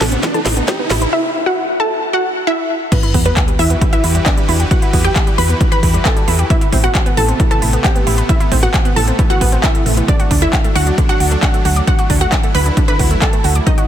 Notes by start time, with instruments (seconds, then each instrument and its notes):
Already playing: supersaw synth C3 A3 B3, riser
0.01 fm bass A1, synth arpeggio sound E3, synth pluck A4 A5, snare, open hi-hat
0.12 synth arpeggio sound C4, closed hi-hat
0.23 synth arpeggio sound E3, kick, snare, closed hi-hat
0.34 synth arpeggio sound E3, synth pluck A4 A5, closed hi-hat
0.46 fm bass A1, synth arpeggio sound E4, snare, open hi-hat
0.57 synth arpeggio sound B3, closed hi-hat
0.68 synth arpeggio sound C4, synth pluck G4 G5, kick, snare, closed hi-hat
0.79 synth arpeggio sound B3
0.90 fm bass A1, synth arpeggio sound E4, snare, open hi-hat
1.02 synth arpeggio sound B4, closed hi-hat
1.13 synth pluck E4 E5
1.46 synth pluck F#4 F#5
1.80 synth pluck A4 A5
2.13 synth pluck F#4 F#5
2.47 synth pluck E4 E5
2.92 supersaw synth E3 E4 F#4 G4 B4, synth arpeggio sound E3, synth pluck B3 B4, kick, closed hi-hat, crash, sub drop
3.03 synth arpeggio sound E4, closed hi-hat
3.14 fm bass E2, synth arpeggio sound B3, kick, open hi-hat
3.25 synth arpeggio sound G3, synth pluck B3 B4, closed hi-hat
3.37 synth arpeggio sound B3, kick, clap, closed hi-hat
3.48 synth arpeggio sound G3, closed hi-hat
3.59 fm bass E2, synth arpeggio sound E3, synth pluck E4 E5, open hi-hat
3.70 synth arpeggio sound B3, closed hi-hat
3.81 synth arpeggio sound E3, kick, closed hi-hat
3.93 synth arpeggio sound E3, synth pluck E4 E5, closed hi-hat
4.04 fm bass E2, synth arpeggio sound E4, open hi-hat
4.15 synth arpeggio sound G3, closed hi-hat
4.26 synth arpeggio sound B3, synth pluck D4 D5, kick, clap, closed hi-hat
4.37 synth arpeggio sound G3, closed hi-hat
4.49 fm bass E2, synth arpeggio sound E4, open hi-hat
4.60 synth arpeggio sound G4, closed hi-hat
4.71 synth arpeggio sound E3, synth pluck F#4 F#5, kick, closed hi-hat
4.82 synth arpeggio sound E4, closed hi-hat
4.93 fm bass E2, synth arpeggio sound B3, kick, open hi-hat
5.04 synth arpeggio sound G3, synth pluck G4 G5, closed hi-hat
5.16 synth arpeggio sound B3, kick, clap, closed hi-hat
5.27 synth arpeggio sound G3, closed hi-hat
5.38 fm bass E2, synth arpeggio sound E3, synth pluck B4 B5, open hi-hat
5.49 synth arpeggio sound B3, closed hi-hat
5.60 synth arpeggio sound E3, kick, closed hi-hat
5.72 synth arpeggio sound E3, synth pluck B4 B5, closed hi-hat
5.83 fm bass E2, synth arpeggio sound E4, kick, open hi-hat
5.94 synth arpeggio sound G3, closed hi-hat
6.05 synth arpeggio sound B3, synth pluck A4 A5, kick, clap, closed hi-hat
6.16 synth arpeggio sound G3, closed hi-hat
6.28 fm bass E2, synth arpeggio sound E4, open hi-hat
6.39 synth arpeggio sound G4, closed hi-hat
6.50 supersaw synth C3 A3 B3, synth arpeggio sound E3, synth pluck E4 E5, kick, closed hi-hat
6.61 synth arpeggio sound E4, closed hi-hat
6.72 fm bass A1, synth arpeggio sound C4, kick, open hi-hat
6.84 synth arpeggio sound B3, synth pluck F#4 F#5, closed hi-hat
6.95 synth arpeggio sound C4, kick, clap, closed hi-hat
7.06 synth arpeggio sound B3, closed hi-hat
7.17 fm bass A1, synth arpeggio sound E3, synth pluck A4 A5, open hi-hat
7.28 synth arpeggio sound C4, closed hi-hat
7.40 synth arpeggio sound E3, kick, closed hi-hat
7.51 synth arpeggio sound E3, synth pluck A4 A5, closed hi-hat
7.62 fm bass A1, synth arpeggio sound E4, open hi-hat
7.73 synth arpeggio sound B3, closed hi-hat
7.84 synth arpeggio sound C4, synth pluck G4 G5, kick, clap, closed hi-hat
7.96 synth arpeggio sound B3, closed hi-hat
8.07 fm bass A1, synth arpeggio sound E4, open hi-hat
8.18 synth arpeggio sound B4, closed hi-hat
8.29 synth arpeggio sound E3, synth pluck E4 E5, kick, closed hi-hat
8.40 synth arpeggio sound E4, closed hi-hat
8.52 fm bass A1, synth arpeggio sound C4, kick, open hi-hat
8.63 synth arpeggio sound B3, synth pluck F#4 F#5, closed hi-hat
8.74 synth arpeggio sound C4, kick, clap, closed hi-hat
8.85 synth arpeggio sound B3, closed hi-hat
8.96 fm bass A1, synth arpeggio sound E3, synth pluck A4 A5, open hi-hat
9.07 synth arpeggio sound C4, closed hi-hat
9.19 synth arpeggio sound E3, kick, closed hi-hat
9.30 synth arpeggio sound E3, synth pluck F#4 F#5, closed hi-hat
9.41 fm bass A1, synth arpeggio sound B3, kick, open hi-hat
9.52 synth arpeggio sound C4, closed hi-hat
9.63 synth arpeggio sound E4, synth pluck E4 E5, kick, clap, closed hi-hat
9.75 synth arpeggio sound A3, closed hi-hat
9.86 fm bass A1, synth arpeggio sound A3, open hi-hat
9.97 synth arpeggio sound E3, closed hi-hat
10.08 synth arpeggio sound D3, supersaw synth F#3 D4, synth pluck D4 D5, kick, closed hi-hat
10.20 synth arpeggio sound F#4, closed hi-hat
10.31 fm bass D2, synth arpeggio sound D4, kick, open hi-hat
10.42 synth arpeggio sound A3, synth pluck E4 E5, closed hi-hat
10.53 synth arpeggio sound D4, kick, clap, closed hi-hat
10.64 synth arpeggio sound A3, closed hi-hat
10.75 fm bass D2, synth arpeggio sound D3, synth pluck F#4 F#5, open hi-hat
10.87 synth arpeggio sound D4, closed hi-hat
10.98 synth arpeggio sound D3, kick, closed hi-hat
11.09 synth arpeggio sound D3, synth pluck F#4 F#5, closed hi-hat
11.20 fm bass D2, synth arpeggio sound F#4, open hi-hat
11.31 synth arpeggio sound A3, closed hi-hat
11.43 synth arpeggio sound D4, synth pluck F#4 F#5, kick, clap, closed hi-hat
11.54 synth arpeggio sound A3, closed hi-hat
11.65 fm bass D2, synth arpeggio sound F#4, open hi-hat
11.76 synth arpeggio sound D5, closed hi-hat
11.87 synth arpeggio sound D3, supersaw synth E4, synth pluck F#4 F#5, kick, closed hi-hat
11.99 synth arpeggio sound F#4, closed hi-hat
12.10 fm bass D2, synth arpeggio sound D4, kick, open hi-hat
12.21 synth arpeggio sound A3, synth pluck F#4 F#5, closed hi-hat
12.32 synth arpeggio sound D4, kick, clap, closed hi-hat
12.43 synth arpeggio sound A3, closed hi-hat
12.55 fm bass D2, synth arpeggio sound D3, synth pluck B4 B5, open hi-hat
12.66 synth arpeggio sound D4, closed hi-hat
12.77 synth arpeggio sound D3, kick, closed hi-hat
12.88 synth arpeggio sound D3, synth pluck B4 B5, closed hi-hat
12.99 fm bass D2, synth arpeggio sound F#4, kick, open hi-hat
13.11 synth arpeggio sound A3, closed hi-hat
13.22 synth arpeggio sound D4, synth pluck A4 A5, kick, clap, closed hi-hat
13.33 synth arpeggio sound A3, closed hi-hat
13.44 fm bass D2, synth arpeggio sound F#4, open hi-hat
13.55 synth arpeggio sound D5, closed hi-hat
13.67 synth arpeggio sound D#3, supersaw synth F#3 B3 D#4, synth pluck D#4 D#5, kick, closed hi-hat
13.78 synth arpeggio sound F#4, closed hi-hat